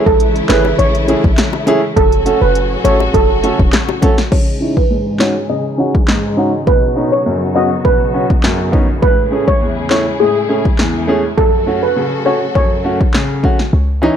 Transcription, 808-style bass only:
0, 0, Header, 1, 2, 480
1, 0, Start_track
1, 0, Tempo, 588235
1, 1605, Time_signature, 4, 2, 24, 8
1, 11560, End_track
2, 0, Start_track
2, 0, Title_t, "808-style bass"
2, 0, Program_c, 0, 38
2, 53, Note_on_c, 0, 33, 91
2, 337, Note_off_c, 0, 33, 0
2, 404, Note_on_c, 0, 32, 92
2, 598, Note_off_c, 0, 32, 0
2, 644, Note_on_c, 0, 33, 109
2, 941, Note_off_c, 0, 33, 0
2, 1014, Note_on_c, 0, 33, 88
2, 1104, Note_off_c, 0, 33, 0
2, 1605, Note_on_c, 0, 30, 110
2, 1901, Note_off_c, 0, 30, 0
2, 1972, Note_on_c, 0, 30, 94
2, 2257, Note_off_c, 0, 30, 0
2, 2324, Note_on_c, 0, 32, 96
2, 2518, Note_off_c, 0, 32, 0
2, 2564, Note_on_c, 0, 30, 100
2, 2860, Note_off_c, 0, 30, 0
2, 2932, Note_on_c, 0, 28, 99
2, 3023, Note_off_c, 0, 28, 0
2, 11204, Note_on_c, 0, 37, 105
2, 11501, Note_off_c, 0, 37, 0
2, 11560, End_track
0, 0, End_of_file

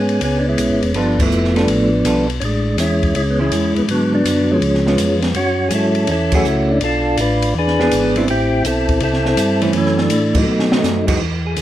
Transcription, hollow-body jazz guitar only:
0, 0, Header, 1, 2, 480
1, 0, Start_track
1, 0, Tempo, 366524
1, 1244, Time_signature, 4, 2, 24, 8
1, 15214, End_track
2, 0, Start_track
2, 0, Title_t, "Hollow-body jazz guitar"
2, 0, Program_c, 0, 26
2, 1240, Note_on_c, 0, 55, 53
2, 1243, Note_on_c, 0, 59, 51
2, 1254, Note_on_c, 0, 65, 57
2, 1257, Note_on_c, 0, 69, 65
2, 1529, Note_off_c, 0, 55, 0
2, 1530, Note_off_c, 0, 59, 0
2, 1536, Note_off_c, 0, 65, 0
2, 1538, Note_off_c, 0, 69, 0
2, 2037, Note_on_c, 0, 55, 57
2, 2048, Note_on_c, 0, 69, 69
2, 2051, Note_on_c, 0, 59, 59
2, 2051, Note_on_c, 0, 65, 59
2, 2186, Note_off_c, 0, 55, 0
2, 2192, Note_off_c, 0, 69, 0
2, 2193, Note_off_c, 0, 59, 0
2, 2193, Note_off_c, 0, 65, 0
2, 2691, Note_on_c, 0, 55, 57
2, 2697, Note_on_c, 0, 59, 59
2, 2697, Note_on_c, 0, 65, 64
2, 2699, Note_on_c, 0, 69, 66
2, 2976, Note_off_c, 0, 55, 0
2, 2979, Note_off_c, 0, 59, 0
2, 2979, Note_off_c, 0, 65, 0
2, 2980, Note_off_c, 0, 69, 0
2, 4442, Note_on_c, 0, 56, 70
2, 4450, Note_on_c, 0, 61, 65
2, 4459, Note_on_c, 0, 64, 69
2, 5054, Note_off_c, 0, 56, 0
2, 5058, Note_off_c, 0, 61, 0
2, 5063, Note_off_c, 0, 64, 0
2, 6380, Note_on_c, 0, 56, 62
2, 6387, Note_on_c, 0, 59, 65
2, 6387, Note_on_c, 0, 65, 63
2, 6983, Note_off_c, 0, 56, 0
2, 6986, Note_off_c, 0, 59, 0
2, 6986, Note_off_c, 0, 65, 0
2, 8285, Note_on_c, 0, 54, 66
2, 8295, Note_on_c, 0, 57, 64
2, 8302, Note_on_c, 0, 64, 66
2, 8307, Note_on_c, 0, 68, 72
2, 8431, Note_off_c, 0, 54, 0
2, 8436, Note_off_c, 0, 57, 0
2, 8439, Note_off_c, 0, 64, 0
2, 8442, Note_off_c, 0, 68, 0
2, 10202, Note_on_c, 0, 52, 70
2, 10209, Note_on_c, 0, 62, 83
2, 10212, Note_on_c, 0, 59, 73
2, 10224, Note_on_c, 0, 68, 78
2, 10650, Note_off_c, 0, 52, 0
2, 10654, Note_off_c, 0, 62, 0
2, 10655, Note_off_c, 0, 59, 0
2, 10662, Note_off_c, 0, 68, 0
2, 10685, Note_on_c, 0, 55, 68
2, 10699, Note_on_c, 0, 60, 78
2, 10703, Note_on_c, 0, 64, 77
2, 10829, Note_off_c, 0, 55, 0
2, 10836, Note_off_c, 0, 60, 0
2, 10839, Note_off_c, 0, 64, 0
2, 12590, Note_on_c, 0, 52, 75
2, 12593, Note_on_c, 0, 57, 82
2, 12604, Note_on_c, 0, 61, 83
2, 13204, Note_off_c, 0, 52, 0
2, 13205, Note_off_c, 0, 57, 0
2, 13211, Note_off_c, 0, 61, 0
2, 14032, Note_on_c, 0, 54, 78
2, 14038, Note_on_c, 0, 57, 80
2, 14043, Note_on_c, 0, 63, 76
2, 14484, Note_off_c, 0, 54, 0
2, 14487, Note_off_c, 0, 57, 0
2, 14489, Note_off_c, 0, 63, 0
2, 14501, Note_on_c, 0, 52, 68
2, 14501, Note_on_c, 0, 56, 75
2, 14512, Note_on_c, 0, 63, 74
2, 14514, Note_on_c, 0, 66, 75
2, 14656, Note_off_c, 0, 52, 0
2, 14656, Note_off_c, 0, 56, 0
2, 14661, Note_off_c, 0, 63, 0
2, 14662, Note_off_c, 0, 66, 0
2, 15214, End_track
0, 0, End_of_file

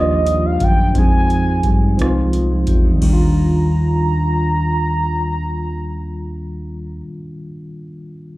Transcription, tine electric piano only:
0, 0, Header, 1, 2, 480
1, 0, Start_track
1, 0, Key_signature, -3, "major"
1, 0, Tempo, 689655
1, 658, Time_signature, 6, 3, 24, 8
1, 5830, End_track
2, 0, Start_track
2, 0, Title_t, "Tine electric piano"
2, 0, Program_c, 0, 4
2, 0, Control_c, 0, 64, 127
2, 0, Note_on_c, 0, 51, 53
2, 0, Note_on_c, 0, 53, 57
2, 0, Note_on_c, 0, 58, 54
2, 0, Note_on_c, 0, 62, 63
2, 0, Note_on_c, 0, 65, 52
2, 0, Note_on_c, 0, 67, 79
2, 10, Note_off_c, 0, 67, 0
2, 10, Note_on_c, 0, 67, 59
2, 560, Note_off_c, 0, 53, 0
2, 565, Note_off_c, 0, 58, 0
2, 573, Note_off_c, 0, 51, 0
2, 599, Note_off_c, 0, 67, 0
2, 653, Note_on_c, 0, 53, 59
2, 663, Note_on_c, 0, 56, 63
2, 667, Control_c, 0, 64, 0
2, 672, Note_off_c, 0, 62, 0
2, 672, Note_on_c, 0, 60, 59
2, 673, Note_off_c, 0, 65, 0
2, 680, Note_on_c, 0, 63, 60
2, 690, Note_on_c, 0, 68, 80
2, 777, Control_c, 0, 64, 127
2, 1281, Note_off_c, 0, 53, 0
2, 1286, Note_off_c, 0, 56, 0
2, 1290, Note_off_c, 0, 60, 0
2, 1294, Note_off_c, 0, 63, 0
2, 1299, Note_off_c, 0, 68, 0
2, 1373, Note_on_c, 0, 53, 64
2, 1382, Note_on_c, 0, 56, 58
2, 1389, Note_on_c, 0, 60, 56
2, 1399, Note_on_c, 0, 63, 59
2, 1410, Note_on_c, 0, 65, 74
2, 2001, Note_off_c, 0, 53, 0
2, 2005, Note_off_c, 0, 56, 0
2, 2009, Note_off_c, 0, 60, 0
2, 2014, Note_off_c, 0, 63, 0
2, 2019, Note_off_c, 0, 65, 0
2, 2037, Note_on_c, 0, 51, 61
2, 2072, Note_on_c, 0, 55, 60
2, 2107, Note_on_c, 0, 58, 58
2, 2108, Control_c, 0, 64, 0
2, 2146, Note_on_c, 0, 62, 54
2, 2180, Note_on_c, 0, 65, 71
2, 2220, Control_c, 0, 64, 127
2, 4809, Note_off_c, 0, 51, 0
2, 4843, Note_off_c, 0, 55, 0
2, 4879, Note_off_c, 0, 58, 0
2, 4917, Note_off_c, 0, 62, 0
2, 4952, Note_off_c, 0, 65, 0
2, 5830, End_track
0, 0, End_of_file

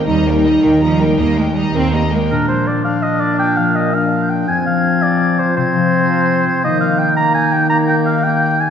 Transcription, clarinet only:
0, 0, Header, 1, 2, 480
1, 0, Start_track
1, 0, Tempo, 371747
1, 90, Time_signature, 12, 3, 24, 8
1, 3448, Tempo, 359712
1, 11495, End_track
2, 0, Start_track
2, 0, Title_t, "Clarinet"
2, 0, Program_c, 0, 71
2, 2982, Note_on_c, 0, 62, 51
2, 3641, Note_off_c, 0, 62, 0
2, 3690, Note_on_c, 0, 62, 57
2, 5115, Note_off_c, 0, 62, 0
2, 5140, Note_on_c, 0, 62, 52
2, 5869, Note_on_c, 0, 60, 55
2, 5889, Note_off_c, 0, 62, 0
2, 7296, Note_off_c, 0, 60, 0
2, 7304, Note_on_c, 0, 60, 59
2, 8752, Note_on_c, 0, 58, 55
2, 8772, Note_off_c, 0, 60, 0
2, 9466, Note_off_c, 0, 58, 0
2, 9472, Note_on_c, 0, 58, 55
2, 10167, Note_off_c, 0, 58, 0
2, 10173, Note_on_c, 0, 58, 58
2, 10875, Note_off_c, 0, 58, 0
2, 10899, Note_on_c, 0, 58, 60
2, 11352, Note_off_c, 0, 58, 0
2, 11495, End_track
0, 0, End_of_file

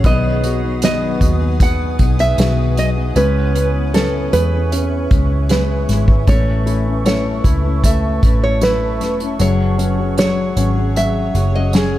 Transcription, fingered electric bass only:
0, 0, Header, 1, 2, 480
1, 0, Start_track
1, 0, Key_signature, 4, "minor"
1, 0, Tempo, 779221
1, 26, Time_signature, 4, 2, 24, 8
1, 7383, End_track
2, 0, Start_track
2, 0, Title_t, "Fingered electric bass"
2, 0, Program_c, 0, 33
2, 25, Note_on_c, 0, 35, 102
2, 721, Note_off_c, 0, 35, 0
2, 744, Note_on_c, 0, 39, 83
2, 1201, Note_off_c, 0, 39, 0
2, 1227, Note_on_c, 0, 35, 89
2, 1450, Note_off_c, 0, 35, 0
2, 1466, Note_on_c, 0, 35, 82
2, 1922, Note_off_c, 0, 35, 0
2, 1945, Note_on_c, 0, 37, 100
2, 2641, Note_off_c, 0, 37, 0
2, 2666, Note_on_c, 0, 40, 77
2, 3122, Note_off_c, 0, 40, 0
2, 3150, Note_on_c, 0, 37, 94
2, 3604, Note_off_c, 0, 37, 0
2, 3627, Note_on_c, 0, 32, 80
2, 3850, Note_off_c, 0, 32, 0
2, 3867, Note_on_c, 0, 33, 95
2, 4562, Note_off_c, 0, 33, 0
2, 4586, Note_on_c, 0, 37, 72
2, 5042, Note_off_c, 0, 37, 0
2, 5070, Note_on_c, 0, 33, 77
2, 5549, Note_off_c, 0, 33, 0
2, 5549, Note_on_c, 0, 28, 87
2, 5771, Note_off_c, 0, 28, 0
2, 5789, Note_on_c, 0, 30, 90
2, 6483, Note_off_c, 0, 30, 0
2, 6508, Note_on_c, 0, 32, 77
2, 6963, Note_off_c, 0, 32, 0
2, 6989, Note_on_c, 0, 30, 94
2, 7383, Note_off_c, 0, 30, 0
2, 7383, End_track
0, 0, End_of_file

